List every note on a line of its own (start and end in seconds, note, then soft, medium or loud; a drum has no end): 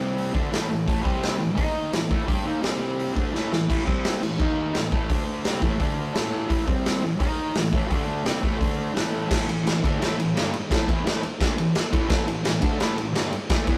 0.00 0.32 C3 loud
0.00 0.34 G3 loud
0.00 0.34 C4 loud
0.18 open hi-hat medium
0.33 0.51 D3 medium
0.33 0.52 A3 medium
0.33 0.51 D4 loud
0.33 kick loud
0.51 0.68 A2 medium
0.51 0.69 E3 loud
0.51 0.70 A3 loud
0.51 snare loud
0.51 open hi-hat medium
0.69 0.84 A2 medium
0.69 0.84 E3 medium
0.86 1.04 A2 loud
0.86 1.05 E3 loud
0.86 1.05 A3 loud
0.86 kick loud
0.86 open hi-hat medium
1.04 1.38 C3 loud
1.04 1.39 G3 loud
1.04 1.40 C4 loud
1.04 kick loud
1.23 snare loud
1.23 open hi-hat medium
1.39 1.55 A2 medium
1.39 1.56 E3 medium
1.55 1.91 D#3 medium
1.55 1.91 A#3 loud
1.55 1.92 D#4 loud
1.55 kick loud
1.55 open hi-hat medium
1.92 2.06 A2 medium
1.92 2.07 E3 medium
1.92 snare loud
1.92 open hi-hat medium
2.10 2.27 A2 medium
2.10 2.26 E3 medium
2.10 2.27 A3 medium
2.10 kick loud
2.27 2.44 G3 medium
2.27 2.45 D4 loud
2.27 2.45 G4 loud
2.27 kick loud
2.27 open hi-hat medium
2.44 2.61 D#3 medium
2.44 2.62 A#3 loud
2.44 2.62 D#4 loud
2.62 3.14 C3 medium
2.62 3.15 G3 loud
2.62 3.15 C4 loud
2.62 snare loud
2.62 open hi-hat medium
2.99 open hi-hat medium
3.14 3.32 D3 medium
3.14 3.33 A3 loud
3.14 3.33 D4 medium
3.14 kick loud
3.33 3.50 A2 medium
3.33 3.51 E3 medium
3.33 3.51 A3 medium
3.33 snare medium
3.52 3.66 A2 medium
3.52 3.66 E3 medium
3.52 snare medium
3.69 3.85 A2 loud
3.69 3.86 E3 loud
3.69 3.86 A3 loud
3.69 kick loud
3.69 crash loud
3.85 4.20 C3 loud
3.85 4.21 G3 loud
3.85 4.21 C4 loud
3.85 kick loud
4.04 snare loud
4.04 open hi-hat medium
4.22 4.36 A2 medium
4.22 4.36 E3 medium
4.22 crash medium
4.39 4.74 D#3 loud
4.39 4.74 A#3 medium
4.39 4.74 D#4 loud
4.39 kick loud
4.74 4.88 A2 medium
4.74 4.89 E3 medium
4.74 snare loud
4.74 open hi-hat medium
4.92 5.09 A2 medium
4.92 5.09 E3 medium
4.92 5.09 A3 loud
4.92 kick loud
5.10 5.44 D3 medium
5.10 5.45 A3 loud
5.10 5.45 D4 loud
5.10 kick loud
5.10 open hi-hat medium
5.45 5.62 C3 loud
5.45 5.62 G3 loud
5.45 5.62 C4 loud
5.45 snare loud
5.45 open hi-hat medium
5.62 5.79 A2 medium
5.62 5.80 E3 medium
5.62 5.79 A3 loud
5.62 kick loud
5.80 6.14 D3 medium
5.80 6.15 A3 medium
5.80 6.15 D4 loud
5.80 kick loud
5.80 open hi-hat medium
6.14 6.47 A2 medium
6.14 6.47 E3 medium
6.14 6.48 A3 loud
6.14 snare loud
6.14 open hi-hat medium
6.48 6.66 A2 loud
6.48 6.67 E3 loud
6.48 6.67 A3 loud
6.48 kick loud
6.48 open hi-hat medium
6.67 7.02 C3 loud
6.67 7.02 G3 loud
6.67 7.03 C4 loud
6.67 kick loud
6.86 snare loud
6.86 open hi-hat medium
7.03 7.20 A2 medium
7.03 7.20 E3 medium
7.20 7.55 D#3 medium
7.20 7.55 A#3 loud
7.20 7.56 D#4 loud
7.20 kick loud
7.20 open hi-hat medium
7.55 7.70 A2 medium
7.55 7.70 E3 medium
7.55 snare loud
7.55 open hi-hat medium
7.73 7.90 A2 medium
7.73 7.91 E3 medium
7.73 7.91 A3 medium
7.73 kick loud
7.90 8.24 D3 medium
7.90 8.25 A3 loud
7.90 8.25 D4 loud
7.90 kick loud
7.90 open hi-hat medium
8.24 8.42 C3 medium
8.24 8.42 G3 loud
8.24 8.43 C4 loud
8.24 snare loud
8.24 open hi-hat medium
8.42 8.58 A2 medium
8.42 8.59 E3 medium
8.42 8.58 A3 loud
8.42 kick loud
8.59 8.93 D3 loud
8.59 8.94 A3 loud
8.59 8.95 D4 loud
8.59 kick loud
8.59 open hi-hat medium
8.94 9.27 A2 medium
8.94 9.27 E3 medium
8.94 9.28 A3 medium
8.94 snare loud
8.94 open hi-hat medium
9.28 9.46 A2 loud
9.28 9.47 E3 loud
9.28 9.47 A3 loud
9.28 kick loud
9.28 snare loud
9.28 crash loud
9.47 9.62 A2 medium
9.47 9.62 E3 medium
9.47 ride medium
9.64 9.79 A2 medium
9.64 9.79 E3 medium
9.64 snare loud
9.64 ride loud
9.83 9.99 D3 loud
9.83 10.00 A3 medium
9.83 10.01 D4 loud
9.83 kick loud
9.83 ride medium
9.99 10.15 A2 medium
9.99 10.16 E3 loud
9.99 10.18 A3 loud
9.99 snare loud
9.99 ride loud
10.17 10.32 A2 medium
10.17 10.32 E3 medium
10.17 ride medium
10.35 10.52 G2 loud
10.35 10.53 D3 medium
10.35 10.53 G3 loud
10.35 snare loud
10.35 ride loud
10.53 muted distorted electric guitar stroke medium
10.53 ride medium
10.70 10.87 A2 medium
10.70 10.86 E3 loud
10.70 10.88 A3 loud
10.70 kick loud
10.70 snare loud
10.70 ride loud
10.88 11.04 E3 loud
10.88 11.05 B3 loud
10.88 11.05 E4 loud
10.88 kick loud
10.88 ride medium
11.04 11.22 A2 loud
11.04 11.22 E3 loud
11.04 11.23 A3 loud
11.04 snare loud
11.04 ride loud
11.23 muted distorted electric guitar stroke medium
11.23 ride medium
11.40 11.57 D3 loud
11.40 11.57 A3 loud
11.40 11.58 D4 loud
11.40 kick loud
11.40 snare loud
11.40 ride loud
11.57 11.72 A2 medium
11.57 11.72 E3 medium
11.57 ride medium
11.75 snare loud
11.75 ride loud
11.92 12.07 A2 medium
11.92 12.08 E3 loud
11.92 12.08 A3 medium
11.92 kick loud
11.92 ride medium
12.09 12.26 A2 loud
12.09 12.26 E3 loud
12.09 12.27 A3 loud
12.09 kick loud
12.09 snare loud
12.09 ride loud
12.27 12.41 A2 medium
12.27 12.41 E3 medium
12.27 ride medium
12.44 12.58 A2 medium
12.44 12.59 E3 medium
12.44 snare loud
12.44 ride loud
12.61 12.78 D3 loud
12.61 12.79 A3 loud
12.61 12.80 D4 loud
12.61 kick loud
12.61 ride medium
12.79 12.96 A2 loud
12.79 12.96 E3 loud
12.79 12.97 A3 loud
12.79 snare loud
12.79 ride loud
12.97 13.11 A2 medium
12.97 13.12 E3 medium
12.97 ride medium
13.14 13.31 G2 medium
13.14 13.32 D3 loud
13.14 13.32 G3 loud
13.14 snare loud
13.14 ride loud
13.32 muted distorted electric guitar stroke medium
13.32 ride medium
13.49 13.67 A2 loud
13.49 13.66 E3 loud
13.49 13.67 A3 loud
13.49 kick loud
13.49 snare loud
13.49 ride loud
13.67 13.78 E3 medium
13.67 13.78 B3 loud
13.67 13.78 E4 loud
13.67 kick loud
13.67 ride medium